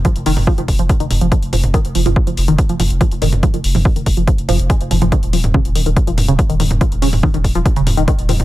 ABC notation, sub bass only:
X:1
M:4/4
L:1/16
Q:1/4=142
K:Ebdor
V:1 name="Sub bass" clef=bass
z F,,, F,,, F,,, z F,,, F,,, F,,, z F,,, F,,, F,,, z F,,, F,,, F,,, | z F,,, F,,, F,,, z F,,, F,,, F,,, z F,,, F,,, F,,, z F,,, F,,, F,,, | z F,,, F,,, F,,, z F,,, F,,, F,,, z F,,, F,,, F,,, z F,,, F,,, F,,, | z E,,, E,,, E,,, z E,,, E,,, E,,, z E,,, E,,, E,,, z E,,, E,,, E,,, |
z E,,, E,,, E,,, z E,,, E,,, E,,, z E,,, E,,, E,,, z E,,, E,,, E,,, |]